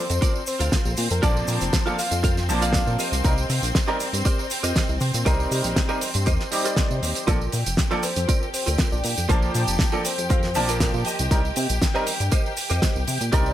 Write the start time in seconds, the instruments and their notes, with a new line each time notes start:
Already playing: string section C4 C5, soft synth lead C5
0.10 analog synth bass F2, closed hi-hat, tambourine, cabasa
0.21 clean electric guitar F4 A4 A#4 D5, kick, closed hi-hat, tambourine, cabasa
0.36 tambourine
0.46 soft synth lead C5, open hi-hat, cabasa
0.59 analog synth bass D2, clean electric guitar F4 A4 A#4 F5, closed hi-hat, tambourine, cabasa
0.72 kick, snare, closed hi-hat, tambourine, cabasa
0.85 analog synth bass A#1, tambourine
0.97 analog synth bass A#2, open hi-hat, cabasa
1.10 analog synth bass F2, soft synth lead A#4, closed hi-hat, tambourine, cabasa
1.22 analog synth bass A#1, grand piano F3 A#3 D4 A5, clean electric guitar F4 A4 A#4 D5, soft synth lead D5, kick, closed hi-hat, tambourine, cabasa
1.37 tambourine
1.47 analog synth bass A#2, open hi-hat, cabasa
1.61 analog synth bass F1, closed hi-hat, tambourine, cabasa
1.73 kick, snare, closed hi-hat, tambourine, cabasa
1.86 grand piano F3 A#3 D4 A4, clean electric guitar F4 A4 A#4 F5, tambourine
1.98 soft synth lead F5, open hi-hat, cabasa
2.11 analog synth bass F2, closed hi-hat, tambourine, cabasa
2.23 clean electric guitar F4 A4 A#4 F5, kick, closed hi-hat, tambourine, cabasa
2.37 snare, tambourine
2.49 analog synth bass A#1, grand piano F3 A#3 D4 A5, open hi-hat, cabasa
2.61 clean electric guitar F4 A4 A#4 D5, soft synth lead F5, closed hi-hat, tambourine, cabasa
2.73 kick, snare, closed hi-hat, tambourine, cabasa
2.87 analog synth bass A#2, tambourine
2.99 clean electric guitar G4 A#4 C5 D#5, open hi-hat, cabasa
3.12 analog synth bass C2, closed hi-hat, tambourine, cabasa
3.24 analog synth bass C2, grand piano G3 C4 D#4 A#4, kick, closed hi-hat, tambourine, cabasa
3.38 tambourine
3.50 analog synth bass C3, open hi-hat, cabasa
3.63 analog synth bass A#1, closed hi-hat, tambourine, cabasa
3.75 kick, snare, closed hi-hat, tambourine, cabasa
3.87 grand piano G3 C4 D#4 A#4, clean electric guitar G4 A#4 C5 D5, tambourine
4.00 open hi-hat, cabasa
4.13 analog synth bass G2, closed hi-hat, tambourine, cabasa
4.25 clean electric guitar G4 A#4 C5 D5, kick, closed hi-hat, tambourine, cabasa
4.39 tambourine
4.50 open hi-hat, cabasa
4.63 analog synth bass F2, clean electric guitar G4 A#4 C5 D#5, closed hi-hat, tambourine, cabasa
4.76 kick, snare, closed hi-hat, tambourine, cabasa
4.89 analog synth bass C2, tambourine
5.00 analog synth bass C3, open hi-hat, cabasa
5.14 analog synth bass A#2, closed hi-hat, tambourine, cabasa
5.25 analog synth bass C2, grand piano G3 C4 D#4 A#4, clean electric guitar G4 A#4 C5 D#5, kick, closed hi-hat, tambourine, cabasa
5.40 tambourine
5.51 analog synth bass C3, open hi-hat, cabasa
5.64 analog synth bass A#1, closed hi-hat, tambourine, cabasa
5.76 kick, snare, closed hi-hat, tambourine, cabasa
5.89 grand piano G3 C4 D#4 A#4, clean electric guitar G4 A#4 C5 D#5, tambourine
6.01 open hi-hat, cabasa
6.14 analog synth bass G2, closed hi-hat, tambourine, cabasa
6.26 analog synth bass D#2, clean electric guitar G4 A#4 C5 D#5, kick, closed hi-hat, tambourine, cabasa
6.40 snare, tambourine
6.51 grand piano G3 C4 D#4 D6, open hi-hat, cabasa
6.65 clean electric guitar G4 A#4 C5 D5, closed hi-hat, tambourine, cabasa
6.77 kick, snare, closed hi-hat, tambourine, cabasa
6.91 analog synth bass C3, tambourine
7.03 analog synth bass D#2, open hi-hat, cabasa
7.15 closed hi-hat, tambourine, cabasa
7.27 analog synth bass A#1, grand piano F3 A#3 D4 A4, clean electric guitar F4 A4 A#4 D5, string section G4 G5, kick, closed hi-hat, tambourine, cabasa
7.41 tambourine
7.52 analog synth bass A#2, open hi-hat, cabasa
7.66 analog synth bass F1, closed hi-hat, tambourine, cabasa
7.77 kick, snare, closed hi-hat, tambourine, cabasa
7.91 grand piano F3 A#3 D4 A4, clean electric guitar F4 A4 A#4 D5, tambourine
8.03 soft synth lead C5, open hi-hat, cabasa
8.16 analog synth bass F2, closed hi-hat, tambourine, cabasa
8.28 clean electric guitar F4 A4 A#4 D5, kick, closed hi-hat, tambourine, cabasa
8.43 tambourine
8.54 soft synth lead C5, open hi-hat, cabasa
8.66 analog synth bass D2, clean electric guitar F4 A4 A#4 D5, closed hi-hat, tambourine, cabasa
8.78 kick, snare, closed hi-hat, tambourine, cabasa
8.92 analog synth bass A#1, soft synth lead D5, tambourine
9.04 analog synth bass A#2, open hi-hat, cabasa
9.17 analog synth bass F2, closed hi-hat, tambourine, cabasa
9.28 analog synth bass A#1, grand piano F3 A#3 D4 A5, clean electric guitar F4 A4 A#4 C5, kick, closed hi-hat, tambourine, cabasa
9.42 tambourine
9.54 analog synth bass A#2, open hi-hat, cabasa
9.68 analog synth bass F1, closed hi-hat, tambourine, cabasa
9.79 kick, snare, closed hi-hat, tambourine, cabasa
9.92 grand piano F3 A#3 D4 A4, clean electric guitar F4 A4 A#4 D5, tambourine
10.05 soft synth lead C5, open hi-hat, cabasa
10.18 analog synth bass F2, closed hi-hat, tambourine, cabasa
10.30 clean electric guitar F4 A4 A#4 F5, kick, closed hi-hat, tambourine, cabasa
10.43 snare, tambourine
10.55 analog synth bass A#1, grand piano F3 A#3 D4 A5, clean electric guitar D5, open hi-hat, cabasa
10.68 clean electric guitar F4 A4 A#4 D5, soft synth lead A#4, closed hi-hat, tambourine, cabasa
10.80 soft synth lead A#4, clean electric guitar F5, kick, snare, closed hi-hat, tambourine, cabasa
10.94 analog synth bass A#2, tambourine
11.05 clean electric guitar G4 A#4 C5 D#5 G5, open hi-hat, cabasa
11.19 analog synth bass C2, closed hi-hat, tambourine, cabasa
11.31 analog synth bass C2, grand piano G3 C4 D#4 A#4, kick, closed hi-hat, tambourine, cabasa
11.45 tambourine
11.56 analog synth bass C3, open hi-hat, cabasa
11.69 analog synth bass A#1, closed hi-hat, tambourine, cabasa
11.82 kick, snare, closed hi-hat, tambourine, cabasa
11.94 grand piano G3 C4 D#4 A#4, clean electric guitar G4 A#4 C5 D#5, tambourine
12.07 open hi-hat, cabasa
12.20 analog synth bass G2, closed hi-hat, tambourine, cabasa
12.31 clean electric guitar G4 A#4 C5 D#5, kick, closed hi-hat, tambourine, cabasa
12.46 tambourine
12.57 open hi-hat, cabasa
12.70 analog synth bass F2, clean electric guitar G4 A#4 C5 D#5, closed hi-hat, tambourine, cabasa
12.82 kick, snare, closed hi-hat, tambourine, cabasa
12.96 analog synth bass C2, tambourine
13.08 analog synth bass C3, open hi-hat, cabasa
13.20 analog synth bass A#2, closed hi-hat, tambourine, cabasa
13.32 analog synth bass C2, grand piano G3 C4 D#4 A#4, clean electric guitar G4 A#4 C5 D5, kick, closed hi-hat, tambourine, cabasa
13.46 tambourine